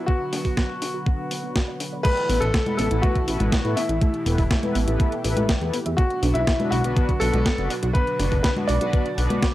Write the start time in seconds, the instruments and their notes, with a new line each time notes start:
Already playing: analog synth pad D3 F#3 B3 F#4 B4, analog polysynth B3 D4 F#4 B4
0.06 synth arpeggio sound B3, grand piano F#4, kick
0.33 synth arpeggio sound D4, snare, open hi-hat
0.45 synth arpeggio sound F#4, kick, open hi-hat
0.57 synth arpeggio sound B3, kick, snare
0.82 synth arpeggio sound D4, open hi-hat
0.94 synth arpeggio sound F#4
1.06 synth arpeggio sound B3, kick
1.31 synth arpeggio sound B3, open hi-hat
1.43 synth arpeggio sound B3
1.56 synth arpeggio sound F#4, kick, snare
1.68 synth arpeggio sound D5
1.80 synth arpeggio sound D4, open hi-hat
1.93 synth arpeggio sound D5
2.03 analog synth pad B2 E3 A3 E4 A4, synth arpeggio sound A3, grand piano B4, kick, closed hi-hat, crash
2.17 closed hi-hat
2.29 analog synth bass A1, synth arpeggio sound B3, analog polysynth B3 E4 A4 B4, open hi-hat
2.40 analog synth bass A1, synth arpeggio sound E4, grand piano A4, closed hi-hat
2.54 synth arpeggio sound A3, kick, snare, closed hi-hat
2.66 analog polysynth B3 E4 A4 B4, closed hi-hat, high conga
2.77 analog synth bass A1, synth arpeggio sound B3, grand piano A4, open hi-hat
2.91 analog synth bass A1, analog polysynth B3 E4 A4 B4, synth arpeggio sound E4, closed hi-hat
3.02 synth arpeggio sound A3, grand piano F#4, kick, closed hi-hat
3.15 kick, closed hi-hat
3.28 analog synth bass A1, analog polysynth B3 E4 A4 B4, synth arpeggio sound E4, open hi-hat
3.40 analog synth bass A1, synth arpeggio sound E4, closed hi-hat, high conga
3.52 synth arpeggio sound A3, kick, snare, closed hi-hat
3.65 analog synth bass A2, analog polysynth B3 E4 A4 B4, closed hi-hat
3.76 synth arpeggio sound B3, grand piano E4, open hi-hat
3.89 analog synth bass A1, synth arpeggio sound E4, closed hi-hat
4.01 synth arpeggio sound A3, analog synth pad G4, kick, closed hi-hat
4.14 closed hi-hat
4.26 analog synth bass E1, analog polysynth B3 E4 A4 B4, synth arpeggio sound B3, open hi-hat
4.38 analog synth bass E1, synth arpeggio sound E4, kick, open hi-hat
4.51 synth arpeggio sound A3, kick, snare, closed hi-hat
4.63 analog polysynth B3 E4 A4 B4, closed hi-hat, high conga
4.75 analog synth bass A1, synth arpeggio sound B3, open hi-hat
4.87 analog synth bass A1, analog polysynth B3 E4 A4 B4, synth arpeggio sound E4, closed hi-hat
5.00 synth arpeggio sound A3, kick, closed hi-hat
5.12 closed hi-hat
5.24 analog synth bass A1, analog polysynth B3 E4 A4 B4, synth arpeggio sound E4, open hi-hat
5.37 analog synth bass A1, synth arpeggio sound E4, closed hi-hat, high conga
5.49 synth arpeggio sound A3, kick, snare, closed hi-hat
5.61 analog synth bass E2, analog polysynth B3 E4 A4 B4, closed hi-hat
5.74 synth arpeggio sound B3, open hi-hat
5.86 analog synth bass E2, synth arpeggio sound E4, closed hi-hat
5.97 analog synth pad B2 D3 F#3 D4 F#4, synth arpeggio sound B3, grand piano F#4, kick, closed hi-hat
6.10 closed hi-hat
6.23 analog synth bass B1, analog polysynth B3 D4 F#4 B4, synth arpeggio sound D4, open hi-hat
6.34 analog synth bass B1, grand piano E4, synth arpeggio sound F#4, closed hi-hat
6.47 synth arpeggio sound B3, kick, snare, closed hi-hat
6.60 analog polysynth B3 D4 F#4 B4, closed hi-hat, high conga
6.71 analog synth bass B1, synth arpeggio sound D4, grand piano F#4, open hi-hat
6.84 analog synth bass B1, analog polysynth B3 D4 F#4 B4, synth arpeggio sound F#4, closed hi-hat
6.97 synth arpeggio sound B3, kick, closed hi-hat
7.09 kick, closed hi-hat
7.20 analog synth bass B1, analog polysynth B3 D4 F#4 B4, synth arpeggio sound F#4, grand piano A4, open hi-hat
7.33 analog synth bass B1, synth arpeggio sound F#4, closed hi-hat, high conga
7.46 synth arpeggio sound B3, kick, snare, closed hi-hat
7.58 analog synth bass F#1, analog polysynth B3 D4 F#4 B4, closed hi-hat
7.70 synth arpeggio sound D4, open hi-hat
7.83 analog synth bass B1, synth arpeggio sound F#4, closed hi-hat
7.93 synth arpeggio sound B3, grand piano B4, kick, closed hi-hat
8.07 closed hi-hat
8.19 analog synth bass F#1, analog polysynth B3 D4 F#4 B4, synth arpeggio sound D4, snare, open hi-hat
8.32 analog synth bass F#1, synth arpeggio sound F#4, kick, open hi-hat
8.43 synth arpeggio sound B3, grand piano B4, kick, snare, closed hi-hat
8.56 analog polysynth B3 D4 F#4 B4, closed hi-hat, high conga
8.68 analog synth bass B1, synth arpeggio sound D4, grand piano D5, open hi-hat
8.81 analog synth bass B1, analog polysynth B3 D4 F#4 B4, synth arpeggio sound F#4, closed hi-hat
8.93 synth arpeggio sound B3, kick, closed hi-hat
9.06 closed hi-hat
9.18 analog synth bass B1, analog polysynth B3 D4 F#4 B4, synth arpeggio sound F#5, open hi-hat
9.30 analog synth bass B1, synth arpeggio sound B3, closed hi-hat, high conga
9.42 synth arpeggio sound B3, kick, snare, closed hi-hat